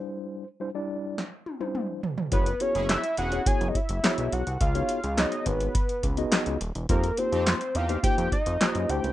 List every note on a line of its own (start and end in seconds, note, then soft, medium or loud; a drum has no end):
0.00 0.43 G3 medium
0.00 0.43 D4 medium
0.00 0.43 E4 medium
0.00 0.47 C5 loud
0.60 0.68 G3 medium
0.60 0.68 D4 medium
0.60 0.69 E4 medium
0.60 0.69 C5 loud
0.74 1.22 G3 loud
0.74 1.22 D4 loud
0.74 1.22 E4 medium
0.74 1.22 D5 loud
1.18 snare medium
1.46 high tom medium
1.60 2.00 G3 medium
1.60 2.00 D4 medium
1.60 2.00 E4 medium
1.60 2.00 C5 loud
1.60 high tom medium
1.75 mid tom medium
2.03 floor tom loud
2.18 floor tom medium
2.32 2.54 F#1 loud
2.32 2.48 B3 medium
2.32 2.48 E4 medium
2.32 2.48 F#4 medium
2.32 2.48 G#4 medium
2.32 2.63 B4 loud
2.32 2.48 C#5 medium
2.32 kick loud
2.32 closed hi-hat medium
2.46 closed hi-hat medium
2.60 3.00 B3 medium
2.60 3.00 E4 medium
2.60 3.00 F#4 medium
2.60 3.00 G#4 medium
2.60 3.00 C#5 medium
2.60 2.89 C#5 loud
2.60 closed hi-hat medium
2.75 2.97 F#1 loud
2.75 2.87 C#4 loud
2.75 2.87 E4 loud
2.75 2.87 G#4 loud
2.75 closed hi-hat medium
2.89 3.16 E5 loud
2.89 snare medium
2.89 clap medium
2.89 closed hi-hat loud
3.04 closed hi-hat medium
3.17 3.40 E1 medium
3.17 3.42 C#4 medium
3.17 3.42 E4 medium
3.17 3.42 G#4 loud
3.17 3.48 F#5 loud
3.17 closed hi-hat medium
3.32 3.40 B3 medium
3.32 3.40 E4 medium
3.32 3.40 F#4 medium
3.32 3.40 G#4 medium
3.32 3.40 C#5 medium
3.32 closed hi-hat medium
3.46 3.78 B3 medium
3.46 3.78 E4 medium
3.46 3.78 F#4 medium
3.46 3.78 G#4 medium
3.46 3.78 C#5 medium
3.46 3.70 G#5 loud
3.46 kick loud
3.46 closed hi-hat loud
3.61 3.72 F#1 loud
3.61 closed hi-hat soft
3.68 3.77 D#5 medium
3.75 4.34 E5 loud
3.75 kick medium
3.75 closed hi-hat medium
3.89 4.01 F#1 loud
3.89 closed hi-hat medium
4.03 4.43 B3 medium
4.03 4.43 E4 medium
4.03 4.43 F#4 medium
4.03 4.43 G#4 medium
4.03 4.43 C#5 medium
4.03 snare loud
4.03 clap medium
4.03 closed hi-hat medium
4.18 4.29 B1 medium
4.18 closed hi-hat soft
4.32 4.44 B1 loud
4.32 4.61 F#5 loud
4.32 closed hi-hat medium
4.47 4.58 C2 medium
4.47 closed hi-hat soft
4.61 4.83 C#2 loud
4.61 5.20 F5 loud
4.61 kick loud
4.61 closed hi-hat medium
4.75 4.98 B3 medium
4.75 4.98 D#4 medium
4.75 4.99 F#4 medium
4.75 4.99 G#4 medium
4.75 4.99 C#5 loud
4.75 closed hi-hat medium
4.89 closed hi-hat medium
5.04 5.26 C#2 loud
5.04 closed hi-hat soft
5.18 5.73 B3 medium
5.18 5.73 D#4 medium
5.18 5.73 F#4 medium
5.18 5.73 G#4 medium
5.18 5.73 C#5 medium
5.18 5.48 D#5 loud
5.18 snare loud
5.18 clap medium
5.18 closed hi-hat medium
5.32 closed hi-hat soft
5.46 5.69 G#1 loud
5.46 6.61 B4 loud
5.46 kick loud
5.46 closed hi-hat medium
5.60 closed hi-hat medium
5.75 kick loud
5.75 closed hi-hat loud
5.89 closed hi-hat soft
6.03 6.26 C#2 medium
6.03 kick medium
6.03 closed hi-hat medium
6.17 6.57 B3 loud
6.17 6.57 D#4 loud
6.17 6.57 F#4 medium
6.17 6.57 G#4 loud
6.17 6.57 D#5 loud
6.17 closed hi-hat medium
6.32 snare loud
6.32 clap medium
6.32 closed hi-hat loud
6.46 6.58 C#2 medium
6.46 closed hi-hat soft
6.61 6.72 D#1 medium
6.61 closed hi-hat medium
6.75 6.86 E1 medium
6.75 closed hi-hat medium
6.89 7.12 F2 loud
6.89 7.05 A#3 medium
6.89 7.05 D#4 medium
6.89 7.05 F4 medium
6.89 7.05 G4 medium
6.89 7.20 A#4 loud
6.89 7.05 C5 medium
6.89 kick loud
6.89 closed hi-hat medium
7.04 closed hi-hat medium
7.17 7.57 A#3 medium
7.17 7.57 D#4 medium
7.17 7.57 F4 medium
7.17 7.57 G4 medium
7.17 7.77 C5 loud
7.17 7.57 C5 medium
7.17 closed hi-hat medium
7.32 7.55 F2 loud
7.32 7.44 C4 loud
7.32 7.44 D#4 loud
7.32 7.44 G4 loud
7.32 closed hi-hat medium
7.47 snare loud
7.47 clap medium
7.47 closed hi-hat medium
7.61 closed hi-hat medium
7.75 7.97 E2 loud
7.75 7.99 C4 loud
7.75 7.99 D#4 medium
7.75 7.99 G4 loud
7.75 8.03 F5 loud
7.75 closed hi-hat medium
7.89 7.97 A#3 medium
7.89 7.97 D#4 medium
7.89 7.97 F4 medium
7.89 7.97 G4 medium
7.89 7.97 C5 medium
7.89 closed hi-hat medium
8.03 8.35 A#3 medium
8.03 8.35 D#4 medium
8.03 8.35 F4 medium
8.03 8.35 G4 medium
8.03 8.35 C5 medium
8.03 8.30 G5 loud
8.03 kick loud
8.03 closed hi-hat loud
8.18 8.29 F2 loud
8.18 closed hi-hat soft
8.32 8.91 D#5 loud
8.32 kick medium
8.32 closed hi-hat medium
8.46 8.58 F2 medium
8.46 closed hi-hat medium
8.60 8.89 A#3 medium
8.60 8.89 D#4 medium
8.60 8.89 F4 medium
8.60 8.89 G4 medium
8.60 8.89 C5 medium
8.60 snare loud
8.60 clap medium
8.60 closed hi-hat medium
8.75 8.86 F#2 medium
8.75 closed hi-hat medium
8.89 9.00 D2 loud
8.89 9.13 A3 medium
8.89 9.13 D4 medium
8.89 9.13 E4 medium
8.89 9.13 G4 medium
8.89 9.13 C5 loud
8.89 9.13 G5 loud
8.89 closed hi-hat medium
9.04 9.13 C#2 medium
9.04 closed hi-hat soft